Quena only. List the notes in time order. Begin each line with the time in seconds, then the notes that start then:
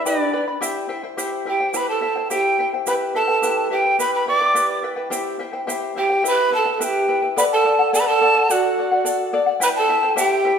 0.06 D5
1.49 G5
1.76 B5
1.89 A5
2.31 G5
2.88 B5
3.16 A5
3.73 G5
4.00 B5
4.15 B5
4.28 D6
5.98 G5
6.27 B5
6.54 A5
6.74 A5
6.84 G5
7.38 B5
7.53 A5
7.94 A5
8.00 B5
8.07 A5
8.51 F#5
9.63 B5
9.76 A5
10.18 G5